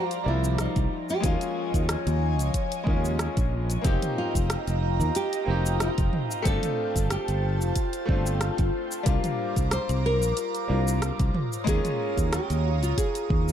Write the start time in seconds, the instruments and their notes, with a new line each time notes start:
Already playing: analog synth pad F3 C5 D5 A#5, grand piano G3 A#3 D4 F4, nylon-string guitar F4
0.11 closed hi-hat, shaker
0.24 fretless electric bass C2, grand piano F3 G3 A#3 D5
0.28 nylon-string guitar E4
0.44 shaker
0.58 nylon-string guitar D#4, cross-stick, closed hi-hat, shaker
0.76 fretless electric bass C2, kick, closed hi-hat, shaker
0.91 analog synth pad C#5 D#5 G#5
1.09 nylon-string guitar G4, shaker
1.20 fretless electric bass D#2, grand piano G#3 A#3 C#4, kick, closed hi-hat
1.24 nylon-string guitar F4, grand piano F4, shaker
1.41 closed hi-hat, shaker
1.74 fretless electric bass D#2, kick, closed hi-hat, shaker
1.89 cross-stick, closed hi-hat, shaker
2.06 fretless electric bass D#2, closed hi-hat, shaker
2.39 fretless electric bass C#2, closed hi-hat, shaker
2.54 kick, closed hi-hat, shaker
2.72 closed hi-hat, shaker
2.84 fretless electric bass D#2, grand piano G#3 A#3 C#4, kick
2.90 grand piano F4
3.05 shaker
3.19 cross-stick, closed hi-hat, shaker
3.37 fretless electric bass A#1, kick, closed hi-hat, shaker
3.70 closed hi-hat, shaker
3.81 fretless electric bass F1, grand piano A#3 C4 D#4, analog synth pad F4 D#5 G5 A#5, nylon-string guitar G4, kick, closed hi-hat, shaker
3.87 grand piano G4
4.02 closed hi-hat, mid tom, shaker
4.18 nylon-string guitar F4
4.35 fretless electric bass F1, kick, closed hi-hat, shaker
4.50 cross-stick, closed hi-hat, shaker
4.67 fretless electric bass F1, closed hi-hat, shaker
5.00 fretless electric bass D#2, shaker
5.15 nylon-string guitar G4, closed hi-hat, shaker
5.33 closed hi-hat, shaker
5.45 fretless electric bass F1, grand piano A#3 C4 D#4
5.50 grand piano G4
5.66 shaker
5.80 nylon-string guitar F4, cross-stick, closed hi-hat, shaker
5.98 fretless electric bass F1, kick, closed hi-hat, shaker
6.13 mid tom
6.31 nylon-string guitar D#4, shaker
6.42 fretless electric bass G1, grand piano A3 C4 D4, analog synth pad C5 A5, kick, closed hi-hat, shaker
6.47 grand piano F4, nylon-string guitar A4
6.63 closed hi-hat, mid tom, shaker
6.96 fretless electric bass G1, kick, closed hi-hat, shaker
7.10 nylon-string guitar G4, cross-stick, closed hi-hat, shaker
7.28 fretless electric bass G1, closed hi-hat, shaker
7.61 fretless electric bass F1, shaker
7.76 kick, closed hi-hat, shaker
7.93 closed hi-hat, shaker
8.05 fretless electric bass G1, grand piano A3 C4 D4, kick
8.11 grand piano F4
8.26 shaker
8.41 cross-stick, closed hi-hat, shaker
8.58 fretless electric bass G1, kick, closed hi-hat, shaker
8.91 shaker
9.03 fretless electric bass C2, grand piano G3 A#3 D4, analog synth pad A#5 D6, kick, closed hi-hat, shaker
9.09 grand piano F4
9.24 closed hi-hat, mid tom, shaker
9.56 fretless electric bass C2, kick, closed hi-hat, shaker
9.71 nylon-string guitar C5, cross-stick, closed hi-hat, shaker
9.89 fretless electric bass C2, closed hi-hat, shaker
10.06 nylon-string guitar A#4
10.22 fretless electric bass A#1, shaker
10.37 closed hi-hat, shaker
10.55 closed hi-hat, shaker
10.68 fretless electric bass C2, grand piano G3 A#3 D4 F4
10.88 shaker
11.02 cross-stick, closed hi-hat, shaker
11.19 fretless electric bass C2, kick, closed hi-hat, shaker
11.34 analog synth pad F4 C#5 A#5 D#6, mid tom
11.53 shaker
11.64 fretless electric bass D#2, grand piano G#3 A#3 C#4, kick, closed hi-hat, shaker
11.68 grand piano F4, nylon-string guitar G#4
11.85 closed hi-hat, mid tom, shaker
12.17 fretless electric bass D#2, kick, closed hi-hat, shaker
12.33 nylon-string guitar G4, cross-stick, closed hi-hat, shaker
12.50 fretless electric bass D#2, closed hi-hat, shaker
12.82 fretless electric bass C#2, nylon-string guitar F4, closed hi-hat, shaker
12.98 nylon-string guitar G#4, kick, closed hi-hat, shaker
13.15 closed hi-hat, shaker
13.30 fretless electric bass D#2, kick
13.48 shaker